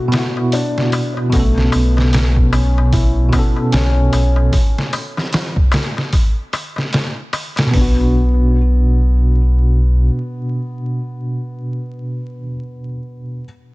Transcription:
0.00 0.08 B2 medium
0.00 1.33 A3 loud
0.00 0.12 B3 medium
0.00 1.35 B3 medium
0.00 0.53 D4 medium
0.00 0.10 E4 medium
0.00 0.12 F#4 medium
0.00 0.50 F#4 medium
0.08 1.27 B2 medium
0.08 1.29 B3 medium
0.08 open hi-hat medium
0.13 1.30 E4 medium
0.13 snare loud
0.13 darbuka tek medium
0.19 1.32 F#4 medium
0.37 darbuka tek soft
0.52 1.30 D4 loud
0.52 open hi-hat medium
0.52 darbuka tek soft
0.78 snare soft
0.92 open hi-hat medium
0.92 darbuka tek medium
1.17 darbuka tek soft
1.29 1.69 B1 loud
1.29 3.27 B2 medium
1.29 1.70 A3 medium
1.29 3.29 B3 medium
1.29 kick loud
1.29 open hi-hat medium
1.33 3.31 C#4 medium
1.33 darbuka tek soft
1.39 3.32 A4 medium
1.58 snare soft
1.72 3.30 B1 medium
1.72 2.12 B3 medium
1.72 open hi-hat medium
1.72 darbuka tek medium
1.97 snare soft
1.97 darbuka tek soft
2.13 snare loud
2.13 open hi-hat medium
2.13 darbuka tek soft
2.37 kick medium
2.53 2.91 C#4 medium
2.53 open hi-hat medium
2.53 darbuka tek medium
2.78 darbuka tek soft
2.92 3.70 E4 medium
2.92 kick loud
2.92 open hi-hat medium
2.92 darbuka tek soft
3.29 4.47 B2 medium
3.29 4.49 B3 medium
3.29 kick medium
3.29 open hi-hat medium
3.29 darbuka tek medium
3.36 4.50 C#4 medium
3.36 4.52 A4 medium
3.56 darbuka tek soft
3.72 4.09 B1 medium
3.72 4.49 C#4 medium
3.72 snare loud
3.72 open hi-hat medium
3.72 darbuka tek soft
4.13 4.49 B1 medium
4.13 open hi-hat medium
4.13 darbuka tek medium
4.36 darbuka tek soft
4.53 kick loud
4.53 open hi-hat medium
4.53 darbuka tek soft
4.78 snare soft
4.93 open hi-hat medium
4.93 darbuka tek medium
5.17 snare soft
5.17 darbuka tek soft
5.33 snare loud
5.33 open hi-hat medium
5.33 darbuka tek soft
5.56 kick medium
5.72 snare loud
5.72 open hi-hat medium
5.72 darbuka tek medium
5.97 snare soft
5.97 darbuka tek soft
6.13 kick loud
6.13 open hi-hat medium
6.13 darbuka tek soft
6.53 open hi-hat medium
6.53 darbuka tek medium
6.76 snare soft
6.76 darbuka tek soft
6.93 snare loud
6.93 open hi-hat medium
6.93 darbuka tek soft
7.33 open hi-hat medium
7.33 darbuka tek medium
7.56 snare loud
7.56 open hi-hat medium
7.56 darbuka tek soft
7.66 12.36 B2 medium
7.71 10.10 B1 medium
7.71 12.38 B3 medium
7.71 8.11 B3 medium
7.71 kick loud
7.71 floor tom medium
7.71 open hi-hat medium
7.76 12.41 D4 medium
7.81 12.43 F#4 medium

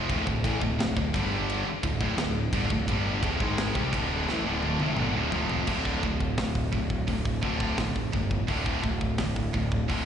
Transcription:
0.09 0.26 D1 medium
0.09 0.26 D2 loud
0.09 0.26 A2 loud
0.09 kick loud
0.09 ride medium
0.27 0.43 D1 medium
0.27 0.44 D2 medium
0.27 0.43 A2 medium
0.27 kick loud
0.44 0.60 A1 medium
0.44 0.60 A2 medium
0.44 0.61 E3 loud
0.44 kick loud
0.44 ride medium
0.61 0.78 D1 medium
0.61 0.77 D2 medium
0.61 0.78 A2 medium
0.61 kick loud
0.78 0.95 D1 medium
0.78 0.96 D2 medium
0.78 0.96 A2 medium
0.78 snare loud
0.78 ride medium
0.97 1.13 D1 medium
0.97 1.13 D2 medium
0.97 1.14 A2 medium
0.97 kick loud
1.13 1.63 G1 loud
1.13 1.64 G2 medium
1.13 1.65 D3 loud
1.13 1.65 G3 medium
1.13 kick loud
1.13 ride medium
1.50 ride medium
1.66 muted picked electric bass stroke soft
1.66 muted distorted electric guitar stroke medium
1.83 1.99 D1 medium
1.83 2.00 D2 medium
1.83 2.01 A2 medium
1.83 kick loud
1.83 ride medium
2.01 2.16 D1 loud
2.01 2.17 D2 medium
2.01 2.18 A2 loud
2.01 kick loud
2.17 2.50 D1 medium
2.17 2.47 D2 medium
2.17 snare loud
2.17 ride loud
2.21 2.47 A2 medium
2.53 2.69 G1 medium
2.53 2.69 G2 medium
2.53 2.70 D3 loud
2.53 kick loud
2.53 ride medium
2.70 2.87 D1 medium
2.70 2.88 D2 medium
2.70 2.89 A2 medium
2.70 kick medium
2.88 3.20 G1 loud
2.88 3.22 G2 medium
2.88 3.23 D3 loud
2.88 3.23 G3 loud
2.88 kick medium
2.88 ride medium
3.23 3.39 D1 loud
3.23 3.40 D2 loud
3.23 3.40 A2 loud
3.23 kick loud
3.23 ride medium
3.40 3.73 G#1 medium
3.40 3.74 G#2 loud
3.40 3.75 D#3 loud
3.40 3.75 G#3 loud
3.40 kick loud
3.58 snare loud
3.58 ride loud
3.75 3.91 C2 loud
3.75 3.92 C3 loud
3.75 3.92 G3 loud
3.75 kick loud
3.93 4.25 D1 medium
3.93 4.27 D2 medium
3.93 4.27 A2 medium
3.93 4.27 D3 loud
3.93 kick loud
3.93 ride medium
4.26 4.43 A1 loud
4.26 4.44 A2 medium
4.26 4.45 E3 loud
4.26 snare medium
4.44 4.77 D1 loud
4.44 4.79 D2 medium
4.44 4.79 A2 medium
4.44 4.80 D3 medium
4.63 high tom medium
4.79 4.96 F1 loud
4.79 4.97 F2 loud
4.79 4.98 C3 loud
4.79 high tom medium
4.97 5.13 G1 loud
4.97 5.15 G2 medium
4.97 5.15 D3 loud
4.97 mid tom medium
5.16 5.32 D1 medium
5.16 5.32 D2 medium
5.16 5.32 A2 loud
5.32 5.65 F1 medium
5.32 5.66 F2 medium
5.32 5.67 C3 loud
5.32 5.67 F3 loud
5.32 floor tom loud
5.50 floor tom loud
5.67 5.98 D1 loud
5.67 6.00 D2 medium
5.67 6.01 A2 loud
5.67 6.01 D3 loud
5.67 kick medium
5.67 crash medium
5.85 kick medium
6.03 6.33 D1 medium
6.03 6.34 D2 medium
6.03 6.35 A2 medium
6.03 kick medium
6.20 kick medium
6.38 6.68 D1 medium
6.38 6.69 D2 medium
6.38 6.69 A2 medium
6.38 kick medium
6.38 snare loud
6.38 open hi-hat medium
6.55 kick medium
6.73 7.03 D1 medium
6.73 7.05 D2 medium
6.73 7.05 A2 medium
6.73 kick medium
6.90 kick medium
7.08 7.38 D1 medium
7.08 7.40 D2 medium
7.08 7.40 A2 loud
7.08 kick medium
7.08 open hi-hat medium
7.25 kick medium
7.43 7.73 D1 medium
7.43 7.76 D2 medium
7.43 7.76 A2 medium
7.43 7.77 D3 loud
7.43 kick medium
7.60 kick medium
7.78 8.08 F1 medium
7.78 8.10 D2 medium
7.78 8.10 A2 medium
7.78 kick medium
7.78 snare loud
7.78 open hi-hat medium
7.96 kick medium
8.13 8.43 G1 medium
8.13 8.45 D2 medium
8.13 8.45 A2 medium
8.13 kick medium
8.31 kick medium
8.48 8.78 D1 loud
8.48 8.81 D2 medium
8.48 8.82 A2 medium
8.48 8.82 D3 loud
8.48 kick medium
8.48 open hi-hat medium
8.66 kick medium
8.83 9.14 D1 medium
8.83 9.14 D2 medium
8.83 9.15 A2 medium
8.83 kick medium
9.01 kick medium
9.18 9.49 D1 medium
9.18 9.50 D2 medium
9.18 9.51 A2 medium
9.18 kick medium
9.18 snare loud
9.18 open hi-hat medium
9.36 kick medium
9.54 9.84 D1 medium
9.54 9.86 D2 medium
9.54 9.85 A2 medium
9.54 kick medium
9.72 kick medium
9.89 10.05 D1 medium
9.89 10.05 D2 medium
9.89 10.05 A2 loud
9.89 10.05 D3 loud
9.89 kick medium
9.89 open hi-hat medium

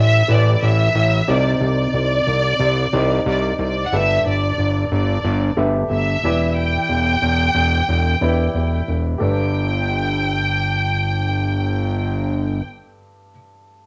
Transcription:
0.00 0.23 A1 medium
0.00 1.29 A2 medium
0.00 0.28 E4 medium
0.00 0.28 G4 medium
0.00 0.28 A4 medium
0.00 1.28 C5 medium
0.00 0.30 E5 medium
0.28 0.56 A1 loud
0.28 1.06 E4 medium
0.28 1.06 G4 medium
0.28 1.06 A4 medium
0.28 1.06 B4 medium
0.28 0.62 D5 medium
0.63 0.89 A1 medium
0.63 1.28 E5 medium
0.95 1.22 A1 medium
1.28 1.55 C2 loud
1.28 2.23 C3 medium
1.28 2.32 D#4 medium
1.28 2.32 G4 medium
1.28 2.32 C5 medium
1.28 2.32 D5 medium
1.28 1.61 D5 medium
1.61 1.88 C2 medium
1.61 3.22 D5 medium
1.94 2.21 C2 medium
2.27 2.54 C2 medium
2.60 2.87 C2 loud
2.93 3.20 C2 loud
2.93 3.71 D#4 medium
2.93 3.71 G4 medium
2.93 3.71 C5 medium
2.93 3.71 D5 medium
3.26 3.53 C2 loud
3.26 3.57 D5 medium
3.59 3.86 C2 medium
3.59 3.84 D5 medium
3.85 3.92 F#5 medium
3.93 4.19 G1 loud
3.93 4.88 G2 medium
3.93 4.97 G4 medium
3.93 4.97 A4 medium
3.93 4.97 B4 soft
3.93 4.97 D5 medium
3.93 4.26 E5 medium
4.26 4.53 G1 medium
4.26 4.88 D5 medium
4.58 4.85 G1 medium
4.92 5.18 G1 medium
4.92 5.54 D5 medium
5.24 5.51 G1 loud
5.57 5.84 G1 medium
5.57 6.23 G4 medium
5.57 6.23 A4 medium
5.57 6.23 B4 soft
5.57 6.23 E5 medium
5.90 6.17 G1 medium
5.90 6.53 E5 medium
6.24 6.78 E1 medium
6.24 7.19 E3 medium
6.24 7.29 E4 medium
6.24 7.30 G4 medium
6.24 7.30 B4 medium
6.24 7.30 D5 medium
6.57 8.88 G5 medium
6.89 7.16 E1 medium
7.22 7.49 E1 medium
7.55 7.82 E1 medium
7.88 8.16 E1 medium
8.21 8.48 E1 medium
8.21 9.00 E4 medium
8.21 9.00 G4 medium
8.21 9.00 B4 medium
8.21 9.00 D5 medium
8.54 8.82 E1 medium
8.88 9.15 E1 medium
9.18 12.61 G1 medium
9.18 13.31 G2 medium
9.18 13.30 G4 medium
9.18 13.31 A4 medium
9.18 13.31 B4 medium
9.18 12.62 G5 medium
9.22 13.32 D5 medium

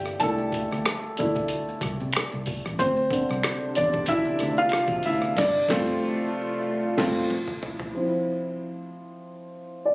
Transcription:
0.00 0.22 G1 medium
0.00 0.22 A3 soft
0.00 0.22 D4 medium
0.00 0.23 E4 medium
0.00 0.17 G4 medium
0.00 2.81 D5 medium
0.00 2.81 E5 medium
0.00 0.22 G5 medium
0.05 cross-stick soft
0.05 maracas soft
0.20 0.49 C2 loud
0.20 1.14 A3 soft
0.20 1.14 D4 soft
0.20 1.14 E4 medium
0.20 0.82 A4 medium
0.20 0.81 A5 medium
0.20 kick loud
0.20 closed hi-hat medium
0.20 maracas medium
0.38 maracas soft
0.52 kick medium
0.52 closed hi-hat medium
0.71 0.85 D2 medium
0.71 cross-stick soft
0.71 maracas soft
0.86 finger snap medium
0.86 cross-stick medium
0.86 closed hi-hat medium
0.86 maracas medium
1.03 maracas soft
1.17 1.62 D2 medium
1.17 1.47 A3 soft
1.17 1.47 D4 soft
1.17 1.47 E4 soft
1.17 kick loud
1.17 closed hi-hat medium
1.17 maracas soft
1.35 kick medium
1.35 maracas soft
1.48 closed hi-hat medium
1.48 maracas medium
1.69 maracas soft
1.81 1.97 C2 medium
1.81 kick medium
1.81 cross-stick soft
1.81 closed hi-hat medium
2.00 2.13 C3 medium
2.00 maracas soft
2.13 finger snap medium
2.13 cross-stick loud
2.13 closed hi-hat medium
2.13 maracas medium
2.32 2.46 C2 medium
2.32 maracas soft
2.46 kick medium
2.46 open hi-hat soft
2.65 2.78 A1 medium
2.65 cross-stick soft
2.65 maracas soft
2.77 3.08 D2 loud
2.77 7.90 C3 medium
2.77 5.34 D3 medium
2.77 3.10 C4 medium
2.77 5.34 D4 medium
2.77 3.78 C5 medium
2.77 kick loud
2.77 closed hi-hat medium
2.77 maracas medium
2.96 maracas soft
3.11 5.33 D3 soft
3.11 5.33 C4 soft
3.11 kick medium
3.11 closed hi-hat medium
3.29 3.42 C2 medium
3.29 cross-stick soft
3.29 maracas soft
3.43 finger snap medium
3.43 cross-stick medium
3.43 closed hi-hat medium
3.43 maracas medium
3.60 maracas soft
3.75 4.33 E2 medium
3.75 3.84 D4 medium
3.75 3.83 D5 medium
3.75 kick medium
3.75 closed hi-hat medium
3.75 maracas soft
3.92 kick medium
3.92 maracas soft
4.06 4.55 E4 medium
4.06 4.59 E5 medium
4.06 kick medium
4.06 closed hi-hat medium
4.06 maracas medium
4.25 maracas soft
4.39 4.69 D2 medium
4.39 cross-stick soft
4.39 closed hi-hat medium
4.57 5.02 F4 medium
4.57 5.06 F5 loud
4.57 maracas soft
4.69 finger snap medium
4.69 cross-stick medium
4.69 closed hi-hat medium
4.69 maracas medium
4.88 5.02 A1 medium
4.88 kick loud
4.88 maracas soft
5.03 5.37 D2 medium
5.03 5.35 E4 medium
5.03 5.35 E5 medium
5.03 open hi-hat soft
5.21 cross-stick soft
5.21 maracas soft
5.36 5.59 G1 medium
5.36 7.28 A3 medium
5.36 5.60 D4 medium
5.36 7.28 F4 medium
5.36 5.59 D5 medium
5.36 kick medium
5.36 snare medium
5.36 crash medium
5.69 5.92 G1 loud
5.69 5.92 A3 medium
5.69 5.92 C4 medium
5.69 5.92 F4 medium
5.69 kick loud
5.69 snare loud
6.97 7.21 G1 medium
6.97 7.20 A3 medium
6.97 7.20 C4 medium
6.97 7.21 F4 medium
6.97 kick loud
6.97 snare medium
6.97 crash medium
7.30 mid tom medium
7.48 mid tom medium
7.63 floor tom medium
7.80 floor tom medium
7.95 8.88 F3 soft
7.95 8.88 C4 soft
7.95 8.88 E4 soft
7.95 9.94 C5 medium
9.85 9.95 D5 medium

